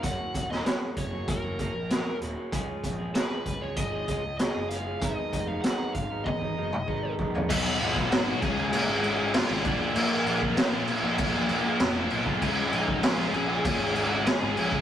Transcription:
<<
  \new Staff \with { instrumentName = "Lead electric guitar" } { \time 4/4 \key des \mixolydian \tempo 4 = 97 ges''8. ees''16 des''8 des''8 bes'4. r8 | r4 ces''8. des''16 ees''8 ees''8 ees''8 f''8 | ees''8. f''16 ges''8 f''8 ees''4. r8 | <dis' dis''>8 <f' f''>8 <fis' fis''>8 <aes' aes''>4~ <aes' aes''>16 <aes' aes''>16 <f' f''>8 <d' d''>8 |
<bes bes'>2.~ <bes bes'>8 r8 | <des' des''>8 <ees' ees''>8 <f' f''>8 <aes' aes''>4~ <aes' aes''>16 <ges' ges''>16 <aes' aes''>8 <aes' aes''>8 | }
  \new Staff \with { instrumentName = "Distorted electric guitar" } { \time 4/4 \key des \mixolydian r1 | r1 | r1 | <b, fis b dis' fis'>8 <fis b dis' fis'>8 <b, fis b dis' fis'>16 <b dis' fis'>16 <des aes des' f' aes'>16 <des' f' aes'>8. <aes des' f' aes'>16 <des' f' aes'>16 <des aes des' f' aes'>16 <des' f' aes'>16 <bes, f bes d' f'>16 <bes d' f'>16 |
<bes, f bes d' f'>8 <f bes d' f'>8 <bes, f bes d' f'>16 <bes d' f'>8 <bes d' f'>8. <f bes d' f'>16 <bes d' f'>16 <bes, f bes d' f'>16 <bes d' f'>16 <f bes d' f'>16 <bes d' f'>16 | <des aes des' f' aes'>8 <aes des' f' aes'>8 <des aes des' f' aes'>16 <des' f' aes'>8 <des' f' aes'>8. <aes des' f' aes'>16 <des' f' aes'>16 <des aes des' f' aes'>16 <des' f' aes'>16 <aes des' f' aes'>16 <des' f' aes'>16 | }
  \new Staff \with { instrumentName = "Distorted electric guitar" } { \time 4/4 \key des \mixolydian r1 | r1 | r1 | <b, fis b dis' fis'>8 <fis b dis' fis'>16 <b dis' fis'>8 <b, fis b dis' fis'>16 <des aes des' f' aes'>16 <des' f' aes'>8 <des' f' aes'>16 <aes des' f' aes'>16 <des' f' aes'>16 <des aes des' f' aes'>8 <bes, f bes d' f'>16 <bes d' f'>16 |
<bes, f bes d' f'>8 <f bes d' f'>16 <bes d' f'>8 <bes, f bes d' f'>16 <f bes d' f'>16 <bes d' f'>8 <bes d' f'>16 <f bes d' f'>16 <bes d' f'>16 <bes, f bes d' f'>8 <f bes d' f'>16 <bes d' f'>16 | <des aes des' f' aes'>8 <aes des' f' aes'>16 <des' f' aes'>8 <des aes des' f' aes'>16 <aes des' f' aes'>16 <des' f' aes'>8 <des' f' aes'>16 <aes des' f' aes'>16 <des' f' aes'>16 <des aes des' f' aes'>8 <aes des' f' aes'>16 <des' f' aes'>16 | }
  \new Staff \with { instrumentName = "Clean electric guitar" } { \time 4/4 \key des \mixolydian <ges, des ges bes des' ges'>8. <ges bes des' ges'>16 <ges, des ges bes des' ges'>8. <ges bes des' ges'>8 <ges bes des' ges'>16 <ges bes des' ges'>8 <ges, des ges bes des' ges'>8 <ges bes des' ges'>16 <ges bes des' ges'>16 | <des aes des' f' aes'>8. <des' f' aes'>16 <des aes des' f' aes'>8. <des' f' aes'>8 <des' f' aes'>16 <aes des' f' aes'>8 <des aes des' f' aes'>8 <aes des' f' aes'>16 <des' f' aes'>16 | <aes, ees aes ces' ees'>8. <aes ces' ees'>16 <aes, ees aes ces' ees'>8. <aes ces' ees'>8 <aes ces' ees'>16 <ees aes ces' ees'>8 <aes, ees aes ces' ees'>8 <ees aes ces' ees'>16 <aes ces' ees'>16 | r1 |
r1 | r1 | }
  \new Staff \with { instrumentName = "Picked electric bass" } { \clef bass \time 4/4 \key des \mixolydian ges,,16 r16 ees,,8 r8 ges,,8 ges,,8. bes,,8 r16 ees,,16 r16 | des,16 r16 bes,,8 r8 des,8 aes,,8 des,8. ges,,8. | aes,,16 r16 f,,8 r8 aes,,8 aes,,8 ges,,8 aes,,8 bes,,8 | b,,16 r16 aes,,4 des,8 bes,16 aes,,4 aes,,16 bes,,16 r16 |
bes,16 r16 bes,,8 r8. bes,,8 bes,,16 bes,16 r16 f,,8 ces,8 | des,16 r16 bes,,4 bes,,8 bes,16 aes,,4 aes,,16 bes,,16 r16 | }
  \new DrumStaff \with { instrumentName = "Drums" } \drummode { \time 4/4 <hh bd>8 <hh bd>16 sn16 <hh sn>8 <hh bd>8 <hh bd>8 <hh bd>8 <hh sn>8 hh8 | <hh bd>8 <hh bd>8 <hh sn>8 <hh bd>8 <hh bd>8 <hh bd>8 <hh sn>8 hh8 | <hh bd>8 <hh bd>8 <hh sn>8 <hh bd>8 <bd tommh>16 bd8 toml16 bd8 bd16 tomfh16 | <cymc bd>8 cymc16 <bd sn>16 <cymc sn>8 <cymc bd>8 cymc8 cymc8 <cymc sn>8 <cymc bd>8 |
cymc8 cymc16 bd16 <cymc sn>8 cymc8 <cymc bd>8 cymc8 <cymc sn>8 cymc16 bd16 | <cymc bd>8 cymc16 bd16 <cymc sn>16 sn16 cymc8 <cymc bd>8 cymc8 <cymc sn>8 cymc16 bd16 | }
>>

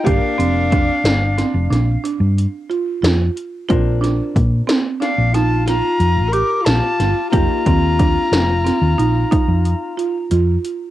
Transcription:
<<
  \new Staff \with { instrumentName = "Flute" } { \time 11/8 \key g \minor \tempo 4 = 91 f''2. r2 r8 | r2 f''8 a''8 bes''4 d'''8 a''4 | bes''1~ bes''8 r4 | }
  \new Staff \with { instrumentName = "Alto saxophone" } { \time 11/8 \key g \minor d'2. r2 r8 | r2 d'8 f'8 f'4 bes'8 f'4 | f'1~ f'8 r4 | }
  \new Staff \with { instrumentName = "Hollow-body jazz guitar" } { \time 11/8 \key g \minor <bes f' bes'>1~ <bes f' bes'>4. | <c' d' bes'>1~ <c' d' bes'>4. | <bes ees' g'>1~ <bes ees' g'>4. | }
  \new Staff \with { instrumentName = "Marimba" } { \time 11/8 \key g \minor g'8 c'8 d'4 c'8 d'8 d'4 f'8 f'4 | f'8 d'4 c'8 d'8 ees'8 f'4 g'4 f'8 | f'8 c'8 d'4 c'8 ees'8 ees'4 f'8 f'4 | }
  \new Staff \with { instrumentName = "Fingered electric bass" } { \clef bass \time 11/8 \key g \minor g,,16 r16 f,,4 g,,8. f,,16 bes,,8 r16 g,8 r8. f,8 r8 | bes,,4 bes,8 r8. bes,,4~ bes,,16 f,16 a,,8 r16 bes,,16 r16 g,,16 r16 | f,,16 r16 ees,4 f,,8. ees,16 bes,,8 r16 f,8 r8. f,8 r8 | }
  \new DrumStaff \with { instrumentName = "Drums" } \drummode { \time 11/8 <hh bd>8 hh8 <hh bd>8 <hh sn>8 <hh sn>8 <hh sn>8 hh8 hh8 hh8 <hh sn>8 hh8 | <hh bd>8 <hh sn>8 <hh bd>8 <hh sn>8 <hh sn>8 <hh sn>8 <hh sn>8 hh8 hh8 <hh sn>8 <hh sn>8 | <hh bd>8 <hh bd>8 <hh bd>8 <hh sn>8 <hh sn>8 hh8 <hh bd>8 hh8 hh8 hh8 hh8 | }
>>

